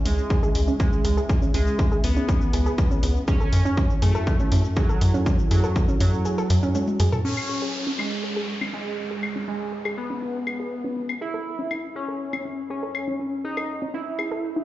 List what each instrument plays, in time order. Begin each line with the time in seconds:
Already playing: analog synth pad C#4 G#4 E5
0.05 analog synth bass C#2, analog polysynth G#3, synth arpeggio sound C#4, open hi-hat, shaker
0.18 shaker
0.30 synth arpeggio sound G#4, kick, shaker
0.43 synth arpeggio sound G#4, shaker
0.55 analog synth bass C#2, open hi-hat, shaker
0.68 synth arpeggio sound C#4, shaker
0.80 analog polysynth G#3, synth arpeggio sound C#4, kick, shaker
0.93 shaker
1.05 analog synth bass C#2, synth arpeggio sound G#4, open hi-hat, shaker
1.17 synth arpeggio sound G#4, shaker
1.29 kick, shaker
1.42 synth arpeggio sound C#4, shaker
1.54 analog synth bass C#2, analog polysynth G#3, synth arpeggio sound C#4, open hi-hat, shaker
1.67 shaker
1.79 synth arpeggio sound G#4, kick, shaker
1.92 synth arpeggio sound G#4, shaker
2.04 analog synth bass C#2, analog polysynth B3, open hi-hat, shaker
2.17 synth arpeggio sound C#4, shaker
2.29 synth arpeggio sound C#4, kick, shaker
2.41 shaker
2.53 analog synth bass C#2, synth arpeggio sound G#4, open hi-hat, shaker
2.66 synth arpeggio sound G#4, shaker
2.78 kick, shaker
2.91 synth arpeggio sound C#4, shaker
3.03 analog synth bass C#2, synth arpeggio sound C#4, open hi-hat, shaker
3.16 shaker
3.28 analog polysynth C#4, analog synth pad E4 F#4 A4, synth arpeggio sound G#4, kick, shaker
3.41 synth arpeggio sound A4, shaker
3.53 analog synth bass F#2, open hi-hat, shaker
3.65 synth arpeggio sound C#4, shaker
3.77 synth arpeggio sound C#4, kick, shaker
3.90 shaker
4.02 analog synth bass F#2, analog polysynth A3, synth arpeggio sound G#4, open hi-hat, shaker
4.15 synth arpeggio sound A4, shaker
4.27 kick, shaker
4.40 synth arpeggio sound C#4, shaker
4.52 analog synth bass F#2, synth arpeggio sound C#4, open hi-hat, shaker
4.65 shaker
4.76 analog polysynth F#3, synth arpeggio sound G#4, kick, shaker
4.89 synth arpeggio sound A4, shaker
5.01 analog synth bass F#2, open hi-hat, shaker
5.14 synth arpeggio sound C#4, shaker
5.26 synth arpeggio sound C#4, kick, shaker
5.39 shaker
5.51 analog synth bass F#2, analog polysynth F#3, synth arpeggio sound G#4, open hi-hat, shaker
5.64 synth arpeggio sound A4, shaker
5.76 kick, shaker
5.88 synth arpeggio sound C#4, shaker
6.00 analog synth bass F#2, analog polysynth F#3, synth arpeggio sound C#4, open hi-hat, shaker
6.13 shaker
6.25 synth arpeggio sound G#4, shaker
6.38 synth arpeggio sound A4, shaker
6.50 analog synth bass F#2, open hi-hat, shaker
6.63 synth arpeggio sound C#4, shaker
6.75 synth arpeggio sound C#4, high tom, shaker
6.88 high tom, shaker
7.00 analog synth bass F#2, synth arpeggio sound G#4, open hi-hat, shaker
7.12 synth arpeggio sound A4, mid tom, shaker
7.24 analog synth pad C#3 G#3 E4, analog polysynth C#4, synth arpeggio sound C#4, downlifter
7.37 claves
7.49 synth arpeggio sound G#4
7.62 synth arpeggio sound G#4
7.87 synth arpeggio sound C#4
7.99 analog polysynth G#3, synth arpeggio sound C#4, claves
8.24 synth arpeggio sound G#4
8.36 synth arpeggio sound G#4
8.61 synth arpeggio sound C#4, claves
8.73 analog polysynth G#3, synth arpeggio sound C#4
8.98 synth arpeggio sound G#4
9.11 synth arpeggio sound G#4
9.23 claves
9.36 synth arpeggio sound C#4
9.48 analog polysynth G#3, synth arpeggio sound C#4
9.72 synth arpeggio sound G#4
9.85 synth arpeggio sound G#4, claves
9.97 analog polysynth B3
10.10 synth arpeggio sound C#4
10.22 synth arpeggio sound C#4
10.47 synth arpeggio sound G#4, claves
10.60 synth arpeggio sound G#4
10.84 synth arpeggio sound C#4
10.96 synth arpeggio sound C#4
11.09 claves
11.21 analog synth pad F#3 A4, analog polysynth E4, synth arpeggio sound G#4
11.34 synth arpeggio sound A4
11.59 synth arpeggio sound C#4
11.71 synth arpeggio sound C#4, claves
11.96 analog polysynth C#4, synth arpeggio sound G#4
12.08 synth arpeggio sound A4
12.33 synth arpeggio sound C#4, claves
12.45 synth arpeggio sound C#4
12.70 analog polysynth C#4, synth arpeggio sound G#4
12.83 synth arpeggio sound A4
12.95 claves
13.08 synth arpeggio sound C#4
13.19 synth arpeggio sound C#4, analog synth pad D#5
13.44 analog polysynth D#4, synth arpeggio sound G#4
13.57 synth arpeggio sound A4, claves
13.82 synth arpeggio sound C#4
13.94 synth arpeggio sound C#4, analog polysynth E4
14.19 synth arpeggio sound G#4, claves
14.31 synth arpeggio sound A4
14.56 synth arpeggio sound D#4